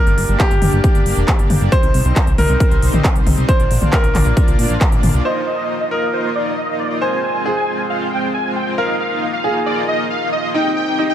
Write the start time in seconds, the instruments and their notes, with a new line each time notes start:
Already playing: supersaw synth A#3 D4 G4 D5, grand piano A#4
0.07 analog synth bass G1, closed hi-hat
0.18 analog synth bass G1, open hi-hat
0.28 analog synth bass G1, supersaw synth A#3 D4 G4 D5, closed hi-hat
0.40 grand piano G4, kick, clap, closed hi-hat
0.51 analog synth bass G1, closed hi-hat
0.62 analog synth bass G1, supersaw synth A#3 D4 G4 D5, open hi-hat, mid tom
0.73 analog synth bass G1, closed hi-hat
0.84 supersaw synth A#3 D4 G4 D5, kick, closed hi-hat
0.95 analog synth bass G1, closed hi-hat
1.06 analog synth bass G1, supersaw synth A#3 D4 G4 D5, open hi-hat
1.17 analog synth bass F1, closed hi-hat
1.28 kick, clap, closed hi-hat
1.39 analog synth bass G1, supersaw synth A#3 D4 G4 D5, closed hi-hat
1.50 analog synth bass G1, open hi-hat, mid tom
1.61 analog synth bass G1, supersaw synth A#3 D4 G4 D5, closed hi-hat
1.72 supersaw synth G3 C4 D#4 C5, grand piano C5, kick, closed hi-hat
1.83 analog synth bass C2, closed hi-hat
1.94 analog synth bass C2, open hi-hat
2.05 analog synth bass C2, supersaw synth G3 C4 D#4 C5, closed hi-hat
2.16 kick, clap, closed hi-hat
2.27 analog synth bass C2, closed hi-hat
2.38 analog synth bass C2, supersaw synth G3 C4 D#4 C5, grand piano A#4, open hi-hat, mid tom
2.49 analog synth bass C2, closed hi-hat
2.60 supersaw synth G3 C4 D#4 C5, kick, closed hi-hat
2.71 analog synth bass C2, closed hi-hat
2.82 analog synth bass C2, supersaw synth G3 C4 D#4 C5, open hi-hat
2.93 analog synth bass A#1, closed hi-hat, mid tom
3.04 kick, clap, closed hi-hat
3.16 analog synth bass C2, supersaw synth G3 C4 D#4 C5, closed hi-hat
3.27 analog synth bass C2, open hi-hat, mid tom
3.38 analog synth bass C2, supersaw synth G3 C4 D#4 C5, closed hi-hat
3.49 supersaw synth A#3 D4 F4 D5, grand piano C5, kick, closed hi-hat
3.60 analog synth bass A#1, closed hi-hat
3.71 analog synth bass A#1, open hi-hat
3.82 analog synth bass A#1, supersaw synth A#3 D4 F4 D5, closed hi-hat, mid tom
3.93 grand piano A#4, kick, clap, closed hi-hat
4.04 analog synth bass A#1, closed hi-hat
4.15 analog synth bass A#1, supersaw synth A#3 D4 F4 D5, clap, open hi-hat, mid tom
4.26 analog synth bass A#1, closed hi-hat
4.37 supersaw synth A#3 D4 F4 D5, kick, closed hi-hat
4.48 analog synth bass C2, closed hi-hat
4.59 analog synth bass A#2, supersaw synth A#3 D4 F4 D5, open hi-hat
4.70 analog synth bass A#1, closed hi-hat
4.81 kick, clap, closed hi-hat
4.92 analog synth bass A#1, supersaw synth A#3 D4 F4 D5, closed hi-hat
5.03 analog synth bass A#1, open hi-hat, mid tom
5.14 analog synth bass C2, supersaw synth A#3 D4 F4 D5, closed hi-hat
5.25 supersaw synth A#3 D#4 F4 D#5, grand piano C5, crash
5.47 supersaw synth D#5
5.58 supersaw synth A#3 D#4 F4 D#5
5.80 supersaw synth D#5
5.91 supersaw synth A#3 D#4 F4 D#5, grand piano A#4
6.13 supersaw synth A#3 D#4 F4 C5 D#5
6.35 supersaw synth A#3 D#4 F4 D5 D#5
6.57 supersaw synth D#5
6.68 supersaw synth A#3 D#4 F4 D#5
6.79 supersaw synth D5
6.90 supersaw synth A#3 D#4 F4 D#5
7.01 supersaw synth G#3 C4 F4 C5 G#5, grand piano C5
7.24 supersaw synth G#5
7.34 supersaw synth G#3 C4 F4 C5
7.46 grand piano G#4
7.57 supersaw synth G#5
7.68 supersaw synth G#3 C4 F4 C5
7.90 supersaw synth G#3 C4 F4 C5 F5
8.12 supersaw synth G#3 C4 F4 C5 G5
8.34 supersaw synth G#5
8.45 supersaw synth G#3 C4 F4 C5
8.56 supersaw synth G5
8.67 supersaw synth G#3 C4 F4 C5
8.78 supersaw synth A#3 D#4 F4 D#5 F5, grand piano A#4
9.00 supersaw synth F5
9.11 supersaw synth A#3 D#4 F4 D#5
9.33 supersaw synth F5
9.44 supersaw synth A#3 D#4 F4 D#5, grand piano G#4
9.66 supersaw synth A#3 D#4 F4 D5 D#5
9.88 supersaw synth A#3 D#4 F4 D#5
10.10 supersaw synth F5
10.21 supersaw synth A#3 D#4 F4 D#5
10.32 supersaw synth D#5
10.43 supersaw synth A#3 D#4 F4 D#5
10.54 supersaw synth C4 D#4 G4 D#5 G5, grand piano D#4
10.76 supersaw synth G5
10.87 supersaw synth C4 D#4 G4 D#5
10.99 grand piano D#4
11.10 supersaw synth G5